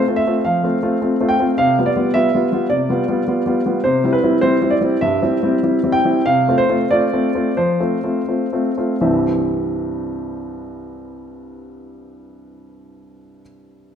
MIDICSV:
0, 0, Header, 1, 2, 480
1, 0, Start_track
1, 0, Key_signature, 0, "major"
1, 0, Tempo, 568182
1, 1339, Time_signature, 4, 2, 24, 8
1, 3735, Tempo, 604230
1, 4695, Tempo, 632244
1, 5655, Tempo, 686499
1, 6615, Tempo, 735294
1, 10325, End_track
2, 0, Start_track
2, 0, Title_t, "Grand piano"
2, 0, Program_c, 0, 0
2, 63, Note_on_c, 0, 57, 35
2, 67, Note_on_c, 0, 60, 36
2, 70, Note_on_c, 0, 65, 39
2, 138, Note_on_c, 0, 76, 66
2, 177, Note_off_c, 0, 57, 0
2, 180, Note_off_c, 0, 60, 0
2, 182, Note_off_c, 0, 65, 0
2, 228, Note_on_c, 0, 57, 34
2, 230, Note_on_c, 0, 60, 34
2, 233, Note_on_c, 0, 65, 39
2, 283, Note_off_c, 0, 76, 0
2, 340, Note_off_c, 0, 57, 0
2, 342, Note_off_c, 0, 60, 0
2, 343, Note_off_c, 0, 65, 0
2, 377, Note_on_c, 0, 77, 59
2, 389, Note_on_c, 0, 53, 41
2, 537, Note_on_c, 0, 57, 32
2, 539, Note_off_c, 0, 53, 0
2, 542, Note_on_c, 0, 60, 35
2, 542, Note_on_c, 0, 65, 37
2, 652, Note_off_c, 0, 57, 0
2, 656, Note_off_c, 0, 60, 0
2, 656, Note_off_c, 0, 65, 0
2, 698, Note_on_c, 0, 57, 35
2, 702, Note_on_c, 0, 65, 42
2, 703, Note_on_c, 0, 60, 37
2, 813, Note_off_c, 0, 57, 0
2, 815, Note_off_c, 0, 65, 0
2, 816, Note_off_c, 0, 60, 0
2, 857, Note_on_c, 0, 57, 35
2, 860, Note_on_c, 0, 60, 30
2, 860, Note_on_c, 0, 65, 38
2, 972, Note_off_c, 0, 57, 0
2, 974, Note_off_c, 0, 65, 0
2, 975, Note_off_c, 0, 60, 0
2, 1018, Note_on_c, 0, 57, 37
2, 1020, Note_on_c, 0, 60, 37
2, 1024, Note_on_c, 0, 65, 39
2, 1063, Note_off_c, 0, 77, 0
2, 1086, Note_on_c, 0, 79, 64
2, 1134, Note_off_c, 0, 57, 0
2, 1135, Note_off_c, 0, 60, 0
2, 1137, Note_off_c, 0, 65, 0
2, 1178, Note_on_c, 0, 57, 33
2, 1181, Note_on_c, 0, 60, 36
2, 1184, Note_on_c, 0, 65, 41
2, 1234, Note_off_c, 0, 79, 0
2, 1293, Note_off_c, 0, 57, 0
2, 1296, Note_off_c, 0, 60, 0
2, 1297, Note_off_c, 0, 65, 0
2, 1334, Note_on_c, 0, 77, 73
2, 1341, Note_on_c, 0, 48, 50
2, 1479, Note_off_c, 0, 77, 0
2, 1495, Note_off_c, 0, 48, 0
2, 1507, Note_on_c, 0, 55, 35
2, 1510, Note_on_c, 0, 59, 35
2, 1511, Note_on_c, 0, 65, 36
2, 1571, Note_on_c, 0, 74, 58
2, 1618, Note_off_c, 0, 55, 0
2, 1620, Note_off_c, 0, 59, 0
2, 1620, Note_off_c, 0, 65, 0
2, 1658, Note_on_c, 0, 59, 38
2, 1659, Note_on_c, 0, 55, 36
2, 1660, Note_on_c, 0, 65, 39
2, 1771, Note_off_c, 0, 55, 0
2, 1771, Note_off_c, 0, 59, 0
2, 1772, Note_off_c, 0, 65, 0
2, 1806, Note_on_c, 0, 76, 74
2, 1811, Note_off_c, 0, 74, 0
2, 1815, Note_on_c, 0, 55, 37
2, 1816, Note_on_c, 0, 65, 43
2, 1818, Note_on_c, 0, 59, 40
2, 1928, Note_off_c, 0, 55, 0
2, 1929, Note_off_c, 0, 65, 0
2, 1930, Note_off_c, 0, 59, 0
2, 1982, Note_on_c, 0, 55, 34
2, 1983, Note_on_c, 0, 59, 34
2, 1984, Note_on_c, 0, 65, 37
2, 2091, Note_off_c, 0, 55, 0
2, 2091, Note_off_c, 0, 59, 0
2, 2092, Note_off_c, 0, 65, 0
2, 2131, Note_on_c, 0, 55, 36
2, 2136, Note_on_c, 0, 59, 36
2, 2138, Note_on_c, 0, 65, 37
2, 2243, Note_off_c, 0, 55, 0
2, 2246, Note_off_c, 0, 59, 0
2, 2247, Note_off_c, 0, 65, 0
2, 2247, Note_off_c, 0, 76, 0
2, 2278, Note_on_c, 0, 74, 61
2, 2286, Note_on_c, 0, 48, 43
2, 2438, Note_off_c, 0, 48, 0
2, 2444, Note_on_c, 0, 55, 38
2, 2452, Note_on_c, 0, 59, 37
2, 2453, Note_on_c, 0, 65, 40
2, 2558, Note_off_c, 0, 55, 0
2, 2563, Note_off_c, 0, 59, 0
2, 2564, Note_off_c, 0, 65, 0
2, 2605, Note_on_c, 0, 55, 38
2, 2607, Note_on_c, 0, 59, 37
2, 2613, Note_on_c, 0, 65, 39
2, 2719, Note_off_c, 0, 55, 0
2, 2720, Note_off_c, 0, 59, 0
2, 2724, Note_off_c, 0, 65, 0
2, 2768, Note_on_c, 0, 55, 32
2, 2771, Note_on_c, 0, 59, 31
2, 2778, Note_on_c, 0, 65, 36
2, 2882, Note_off_c, 0, 55, 0
2, 2883, Note_off_c, 0, 59, 0
2, 2888, Note_off_c, 0, 65, 0
2, 2924, Note_on_c, 0, 55, 37
2, 2932, Note_on_c, 0, 59, 38
2, 2933, Note_on_c, 0, 65, 39
2, 3000, Note_off_c, 0, 74, 0
2, 3039, Note_off_c, 0, 55, 0
2, 3044, Note_off_c, 0, 59, 0
2, 3045, Note_off_c, 0, 65, 0
2, 3088, Note_on_c, 0, 59, 36
2, 3090, Note_on_c, 0, 55, 38
2, 3094, Note_on_c, 0, 65, 39
2, 3202, Note_off_c, 0, 59, 0
2, 3203, Note_off_c, 0, 55, 0
2, 3206, Note_off_c, 0, 65, 0
2, 3242, Note_on_c, 0, 72, 64
2, 3249, Note_on_c, 0, 48, 51
2, 3404, Note_off_c, 0, 48, 0
2, 3413, Note_on_c, 0, 55, 41
2, 3416, Note_on_c, 0, 60, 37
2, 3421, Note_on_c, 0, 64, 41
2, 3462, Note_off_c, 0, 72, 0
2, 3486, Note_on_c, 0, 71, 61
2, 3528, Note_off_c, 0, 55, 0
2, 3530, Note_off_c, 0, 60, 0
2, 3533, Note_off_c, 0, 64, 0
2, 3578, Note_on_c, 0, 55, 38
2, 3578, Note_on_c, 0, 60, 36
2, 3580, Note_on_c, 0, 64, 45
2, 3694, Note_off_c, 0, 55, 0
2, 3694, Note_off_c, 0, 60, 0
2, 3696, Note_off_c, 0, 64, 0
2, 3729, Note_on_c, 0, 72, 72
2, 3734, Note_off_c, 0, 71, 0
2, 3734, Note_on_c, 0, 60, 44
2, 3735, Note_on_c, 0, 55, 39
2, 3743, Note_on_c, 0, 64, 45
2, 3848, Note_off_c, 0, 55, 0
2, 3848, Note_off_c, 0, 60, 0
2, 3854, Note_off_c, 0, 64, 0
2, 3890, Note_on_c, 0, 55, 38
2, 3895, Note_on_c, 0, 60, 35
2, 3897, Note_on_c, 0, 64, 42
2, 3960, Note_on_c, 0, 74, 60
2, 3969, Note_off_c, 0, 72, 0
2, 4006, Note_off_c, 0, 55, 0
2, 4008, Note_off_c, 0, 60, 0
2, 4010, Note_off_c, 0, 64, 0
2, 4044, Note_on_c, 0, 55, 39
2, 4046, Note_on_c, 0, 60, 39
2, 4048, Note_on_c, 0, 64, 40
2, 4162, Note_off_c, 0, 55, 0
2, 4163, Note_off_c, 0, 60, 0
2, 4164, Note_off_c, 0, 64, 0
2, 4181, Note_off_c, 0, 74, 0
2, 4205, Note_on_c, 0, 76, 68
2, 4211, Note_on_c, 0, 43, 44
2, 4367, Note_off_c, 0, 43, 0
2, 4371, Note_on_c, 0, 55, 38
2, 4371, Note_on_c, 0, 60, 39
2, 4373, Note_on_c, 0, 64, 39
2, 4488, Note_off_c, 0, 55, 0
2, 4488, Note_off_c, 0, 60, 0
2, 4489, Note_off_c, 0, 64, 0
2, 4535, Note_on_c, 0, 55, 38
2, 4537, Note_on_c, 0, 60, 42
2, 4543, Note_on_c, 0, 64, 43
2, 4652, Note_off_c, 0, 55, 0
2, 4653, Note_off_c, 0, 60, 0
2, 4656, Note_off_c, 0, 64, 0
2, 4697, Note_on_c, 0, 55, 34
2, 4701, Note_on_c, 0, 60, 33
2, 4702, Note_on_c, 0, 64, 39
2, 4810, Note_off_c, 0, 55, 0
2, 4812, Note_off_c, 0, 60, 0
2, 4813, Note_off_c, 0, 64, 0
2, 4852, Note_on_c, 0, 55, 40
2, 4853, Note_on_c, 0, 60, 41
2, 4858, Note_on_c, 0, 64, 41
2, 4898, Note_off_c, 0, 76, 0
2, 4919, Note_on_c, 0, 79, 69
2, 4966, Note_off_c, 0, 55, 0
2, 4967, Note_off_c, 0, 60, 0
2, 4970, Note_off_c, 0, 64, 0
2, 5014, Note_on_c, 0, 55, 38
2, 5019, Note_on_c, 0, 60, 36
2, 5020, Note_on_c, 0, 64, 45
2, 5128, Note_off_c, 0, 55, 0
2, 5131, Note_off_c, 0, 60, 0
2, 5132, Note_off_c, 0, 64, 0
2, 5165, Note_off_c, 0, 79, 0
2, 5171, Note_on_c, 0, 77, 71
2, 5173, Note_on_c, 0, 48, 54
2, 5328, Note_off_c, 0, 48, 0
2, 5343, Note_on_c, 0, 57, 39
2, 5346, Note_on_c, 0, 60, 40
2, 5346, Note_on_c, 0, 65, 43
2, 5388, Note_off_c, 0, 77, 0
2, 5415, Note_on_c, 0, 72, 69
2, 5455, Note_off_c, 0, 57, 0
2, 5457, Note_off_c, 0, 65, 0
2, 5458, Note_off_c, 0, 60, 0
2, 5500, Note_on_c, 0, 57, 37
2, 5505, Note_on_c, 0, 60, 39
2, 5506, Note_on_c, 0, 65, 40
2, 5561, Note_off_c, 0, 72, 0
2, 5615, Note_off_c, 0, 57, 0
2, 5618, Note_off_c, 0, 60, 0
2, 5619, Note_off_c, 0, 65, 0
2, 5663, Note_on_c, 0, 74, 68
2, 5668, Note_on_c, 0, 57, 40
2, 5668, Note_on_c, 0, 60, 41
2, 5673, Note_on_c, 0, 65, 49
2, 5773, Note_off_c, 0, 57, 0
2, 5774, Note_off_c, 0, 60, 0
2, 5776, Note_off_c, 0, 65, 0
2, 5820, Note_on_c, 0, 57, 37
2, 5823, Note_on_c, 0, 65, 41
2, 5824, Note_on_c, 0, 60, 36
2, 5928, Note_off_c, 0, 57, 0
2, 5930, Note_off_c, 0, 60, 0
2, 5930, Note_off_c, 0, 65, 0
2, 5971, Note_on_c, 0, 57, 34
2, 5973, Note_on_c, 0, 60, 35
2, 5975, Note_on_c, 0, 65, 39
2, 6083, Note_off_c, 0, 57, 0
2, 6085, Note_off_c, 0, 60, 0
2, 6086, Note_off_c, 0, 65, 0
2, 6126, Note_off_c, 0, 74, 0
2, 6128, Note_on_c, 0, 72, 57
2, 6132, Note_on_c, 0, 53, 41
2, 6285, Note_off_c, 0, 53, 0
2, 6288, Note_on_c, 0, 57, 33
2, 6291, Note_on_c, 0, 60, 34
2, 6293, Note_on_c, 0, 65, 37
2, 6405, Note_off_c, 0, 57, 0
2, 6407, Note_off_c, 0, 60, 0
2, 6408, Note_off_c, 0, 65, 0
2, 6454, Note_on_c, 0, 57, 31
2, 6454, Note_on_c, 0, 60, 33
2, 6459, Note_on_c, 0, 65, 36
2, 6572, Note_off_c, 0, 60, 0
2, 6573, Note_off_c, 0, 57, 0
2, 6576, Note_off_c, 0, 65, 0
2, 6623, Note_on_c, 0, 57, 29
2, 6627, Note_on_c, 0, 60, 29
2, 6629, Note_on_c, 0, 65, 32
2, 6735, Note_off_c, 0, 57, 0
2, 6738, Note_off_c, 0, 60, 0
2, 6739, Note_off_c, 0, 65, 0
2, 6785, Note_on_c, 0, 57, 31
2, 6787, Note_on_c, 0, 60, 33
2, 6789, Note_on_c, 0, 65, 35
2, 6834, Note_off_c, 0, 72, 0
2, 6900, Note_off_c, 0, 57, 0
2, 6901, Note_off_c, 0, 60, 0
2, 6902, Note_off_c, 0, 65, 0
2, 6945, Note_on_c, 0, 57, 32
2, 6947, Note_on_c, 0, 60, 30
2, 6949, Note_on_c, 0, 65, 32
2, 7060, Note_off_c, 0, 57, 0
2, 7062, Note_off_c, 0, 60, 0
2, 7063, Note_off_c, 0, 65, 0
2, 7100, Note_on_c, 0, 36, 42
2, 7101, Note_on_c, 0, 43, 38
2, 7102, Note_on_c, 0, 52, 36
2, 7102, Note_on_c, 0, 76, 40
2, 7104, Note_on_c, 0, 55, 35
2, 7106, Note_on_c, 0, 60, 34
2, 7107, Note_on_c, 0, 64, 38
2, 7256, Control_c, 0, 64, 127
2, 9973, Note_off_c, 0, 36, 0
2, 9974, Note_off_c, 0, 43, 0
2, 9974, Note_off_c, 0, 52, 0
2, 9974, Note_off_c, 0, 76, 0
2, 9975, Note_off_c, 0, 55, 0
2, 9976, Note_off_c, 0, 60, 0
2, 9977, Note_off_c, 0, 64, 0
2, 10325, End_track
0, 0, End_of_file